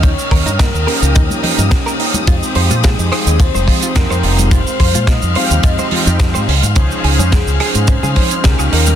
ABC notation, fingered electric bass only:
X:1
M:4/4
L:1/16
Q:"Swing 16ths" 1/4=107
K:Fm
V:1 name="Fingered electric bass" clef=bass
E,, z E,, G,,2 E,, z D,, E,, z2 G,, z4 | F,, z F,, B,,2 F,, z E,,2 F,,, z2 F,, F,, F,,,2- | F,,, z F,, B,,2 F,, z E,, F,, z2 F,,2 A,, D,, A,, | D,, z D,, F,,2 D,, z A,,2 D, z2 D,, D,, E,,2 |]